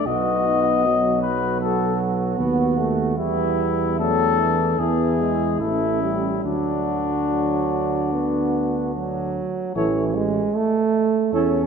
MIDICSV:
0, 0, Header, 1, 6, 480
1, 0, Start_track
1, 0, Key_signature, 2, "major"
1, 0, Tempo, 776197
1, 42, Time_signature, 4, 2, 24, 8
1, 1962, Tempo, 809717
1, 3402, Tempo, 832178
1, 5802, Tempo, 785340
1, 6966, End_track
2, 0, Start_track
2, 0, Title_t, "Trumpet"
2, 0, Program_c, 0, 56
2, 43, Note_on_c, 0, 75, 71
2, 751, Note_off_c, 0, 75, 0
2, 757, Note_on_c, 0, 71, 52
2, 991, Note_off_c, 0, 71, 0
2, 995, Note_on_c, 0, 69, 56
2, 1233, Note_off_c, 0, 69, 0
2, 1963, Note_on_c, 0, 64, 62
2, 2422, Note_off_c, 0, 64, 0
2, 2450, Note_on_c, 0, 69, 84
2, 2919, Note_on_c, 0, 68, 60
2, 2927, Note_off_c, 0, 69, 0
2, 3396, Note_off_c, 0, 68, 0
2, 3400, Note_on_c, 0, 64, 55
2, 3875, Note_off_c, 0, 64, 0
2, 3885, Note_on_c, 0, 62, 51
2, 5546, Note_off_c, 0, 62, 0
2, 5800, Note_on_c, 0, 73, 39
2, 5977, Note_off_c, 0, 73, 0
2, 6766, Note_on_c, 0, 73, 38
2, 6939, Note_off_c, 0, 73, 0
2, 6966, End_track
3, 0, Start_track
3, 0, Title_t, "Flugelhorn"
3, 0, Program_c, 1, 56
3, 38, Note_on_c, 1, 66, 48
3, 522, Note_off_c, 1, 66, 0
3, 526, Note_on_c, 1, 66, 42
3, 994, Note_off_c, 1, 66, 0
3, 1003, Note_on_c, 1, 66, 43
3, 1943, Note_off_c, 1, 66, 0
3, 1965, Note_on_c, 1, 64, 45
3, 2448, Note_on_c, 1, 62, 38
3, 2457, Note_off_c, 1, 64, 0
3, 2920, Note_on_c, 1, 64, 43
3, 2929, Note_off_c, 1, 62, 0
3, 3402, Note_off_c, 1, 64, 0
3, 3405, Note_on_c, 1, 64, 37
3, 3709, Note_off_c, 1, 64, 0
3, 3887, Note_on_c, 1, 66, 39
3, 5591, Note_off_c, 1, 66, 0
3, 5798, Note_on_c, 1, 69, 39
3, 5976, Note_off_c, 1, 69, 0
3, 6761, Note_on_c, 1, 69, 43
3, 6936, Note_off_c, 1, 69, 0
3, 6966, End_track
4, 0, Start_track
4, 0, Title_t, "French horn"
4, 0, Program_c, 2, 60
4, 43, Note_on_c, 2, 63, 49
4, 278, Note_off_c, 2, 63, 0
4, 281, Note_on_c, 2, 63, 43
4, 525, Note_on_c, 2, 59, 49
4, 534, Note_off_c, 2, 63, 0
4, 1959, Note_off_c, 2, 59, 0
4, 1963, Note_on_c, 2, 59, 51
4, 2448, Note_on_c, 2, 57, 41
4, 2457, Note_off_c, 2, 59, 0
4, 2919, Note_on_c, 2, 59, 39
4, 2928, Note_off_c, 2, 57, 0
4, 3232, Note_off_c, 2, 59, 0
4, 3406, Note_on_c, 2, 61, 41
4, 3890, Note_on_c, 2, 62, 43
4, 3899, Note_off_c, 2, 61, 0
4, 5616, Note_off_c, 2, 62, 0
4, 5801, Note_on_c, 2, 64, 48
4, 5978, Note_off_c, 2, 64, 0
4, 6762, Note_on_c, 2, 64, 37
4, 6937, Note_off_c, 2, 64, 0
4, 6966, End_track
5, 0, Start_track
5, 0, Title_t, "Trombone"
5, 0, Program_c, 3, 57
5, 44, Note_on_c, 3, 59, 38
5, 532, Note_on_c, 3, 54, 44
5, 541, Note_off_c, 3, 59, 0
5, 994, Note_off_c, 3, 54, 0
5, 998, Note_on_c, 3, 54, 45
5, 1470, Note_off_c, 3, 54, 0
5, 1473, Note_on_c, 3, 59, 52
5, 1718, Note_on_c, 3, 57, 48
5, 1728, Note_off_c, 3, 59, 0
5, 1963, Note_on_c, 3, 55, 41
5, 1972, Note_off_c, 3, 57, 0
5, 2445, Note_off_c, 3, 55, 0
5, 2449, Note_on_c, 3, 54, 46
5, 2687, Note_on_c, 3, 52, 40
5, 2696, Note_off_c, 3, 54, 0
5, 2922, Note_off_c, 3, 52, 0
5, 2927, Note_on_c, 3, 52, 45
5, 3169, Note_on_c, 3, 56, 40
5, 3178, Note_off_c, 3, 52, 0
5, 3402, Note_on_c, 3, 57, 42
5, 3410, Note_off_c, 3, 56, 0
5, 3641, Note_off_c, 3, 57, 0
5, 3644, Note_on_c, 3, 55, 41
5, 3892, Note_on_c, 3, 54, 32
5, 3900, Note_off_c, 3, 55, 0
5, 4283, Note_off_c, 3, 54, 0
5, 4381, Note_on_c, 3, 54, 44
5, 4834, Note_off_c, 3, 54, 0
5, 4858, Note_on_c, 3, 59, 50
5, 5324, Note_off_c, 3, 59, 0
5, 5336, Note_on_c, 3, 54, 54
5, 5782, Note_off_c, 3, 54, 0
5, 5801, Note_on_c, 3, 52, 50
5, 6048, Note_on_c, 3, 56, 60
5, 6057, Note_off_c, 3, 52, 0
5, 6289, Note_on_c, 3, 57, 55
5, 6298, Note_off_c, 3, 56, 0
5, 6759, Note_off_c, 3, 57, 0
5, 6762, Note_on_c, 3, 61, 52
5, 6966, Note_off_c, 3, 61, 0
5, 6966, End_track
6, 0, Start_track
6, 0, Title_t, "Tuba"
6, 0, Program_c, 4, 58
6, 39, Note_on_c, 4, 35, 49
6, 1456, Note_off_c, 4, 35, 0
6, 1477, Note_on_c, 4, 39, 50
6, 1960, Note_on_c, 4, 40, 51
6, 1969, Note_off_c, 4, 39, 0
6, 2915, Note_off_c, 4, 40, 0
6, 2919, Note_on_c, 4, 40, 47
6, 3400, Note_on_c, 4, 33, 45
6, 3409, Note_off_c, 4, 40, 0
6, 3881, Note_off_c, 4, 33, 0
6, 3885, Note_on_c, 4, 38, 39
6, 5590, Note_off_c, 4, 38, 0
6, 5800, Note_on_c, 4, 33, 47
6, 6204, Note_off_c, 4, 33, 0
6, 6758, Note_on_c, 4, 40, 49
6, 6966, Note_off_c, 4, 40, 0
6, 6966, End_track
0, 0, End_of_file